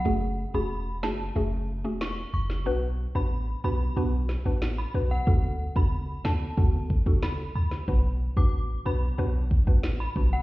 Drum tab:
SD |------o-----o--o|----------o-o---|------o-----o--o|------------o---|
BD |----------------|----------------|o--o----o-oo----|o--o------oo--o-|